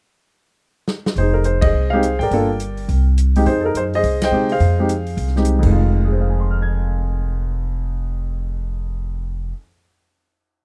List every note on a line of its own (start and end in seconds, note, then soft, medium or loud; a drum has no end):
0.88 snare medium
1.06 snare medium
1.15 1.70 F1 medium
1.15 1.71 D#4 medium
1.15 1.34 C5 medium
1.15 kick soft
1.15 open hi-hat soft
1.20 1.62 G#4 medium
1.33 1.45 A#4 medium
1.44 1.63 C5 medium
1.44 closed hi-hat soft
1.61 1.92 G#4 medium
1.61 1.92 C5 medium
1.61 1.92 D#5 medium
1.61 kick medium
1.61 ride medium
1.73 2.16 C2 medium
1.90 2.02 G#3 medium
1.90 2.02 C4 medium
1.90 2.02 D#4 medium
1.90 2.02 G4 medium
1.90 2.29 G#4 medium
1.90 2.30 C5 medium
1.90 2.20 F5 medium
2.03 closed hi-hat medium
2.19 2.30 G#1 medium
2.19 3.03 A#4 medium
2.19 2.86 D5 medium
2.19 3.02 G5 medium
2.19 open hi-hat soft
2.31 2.85 G1 medium
2.31 2.48 A#3 medium
2.31 2.48 D4 medium
2.31 2.48 F4 medium
2.31 2.48 A4 medium
2.31 kick soft
2.31 open hi-hat soft
2.60 closed hi-hat soft
2.77 open hi-hat soft
2.88 3.43 C2 medium
2.88 kick soft
2.88 open hi-hat soft
3.18 closed hi-hat medium
3.36 3.46 G#3 medium
3.36 3.46 C4 medium
3.36 3.46 D#4 medium
3.36 3.46 G4 medium
3.36 open hi-hat soft
3.46 3.73 F2 medium
3.46 4.00 D#4 medium
3.46 3.94 G#4 medium
3.46 3.60 C5 medium
3.46 kick soft
3.46 open hi-hat soft
3.61 3.64 A4 medium
3.65 3.75 A#4 medium
3.74 4.01 F#2 medium
3.74 3.82 C5 medium
3.74 closed hi-hat soft
3.94 4.47 G#4 medium
3.94 4.23 C5 medium
3.94 4.22 D#5 medium
3.94 open hi-hat soft
4.03 4.30 C2 medium
4.03 kick soft
4.03 open hi-hat soft
4.22 4.50 C5 medium
4.22 4.76 D#5 medium
4.22 4.52 G5 medium
4.22 snare medium
4.22 ride medium
4.31 4.58 C3 medium
4.31 4.48 G#3 soft
4.31 4.48 C4 soft
4.31 4.48 D#4 soft
4.31 4.48 G4 medium
4.49 5.32 G#4 medium
4.49 5.33 C5 medium
4.49 5.33 F5 medium
4.49 open hi-hat soft
4.60 5.15 F2 medium
4.60 kick soft
4.60 open hi-hat soft
4.79 4.89 G#3 medium
4.79 4.89 C4 soft
4.79 4.89 D#4 soft
4.79 4.89 G4 medium
4.89 closed hi-hat soft
5.07 open hi-hat soft
5.17 5.61 C2 medium
5.17 kick soft
5.17 open hi-hat soft
5.27 snare soft
5.36 5.65 G#3 medium
5.36 5.64 C4 medium
5.36 5.65 D#4 soft
5.36 5.65 G4 medium
5.36 snare soft
5.45 closed hi-hat medium
5.59 9.50 F1 medium
5.59 9.53 F2 medium
5.59 crash medium
5.63 9.55 D#3 soft
5.63 kick soft
5.67 9.57 G#3 medium
5.67 9.59 F4 medium
6.05 9.52 G#4 soft
6.12 9.55 C5 soft
6.21 9.60 F5 soft
6.29 9.64 G#5 soft
6.40 9.69 C6 soft
6.51 9.74 F6 soft
6.62 9.80 G#6 soft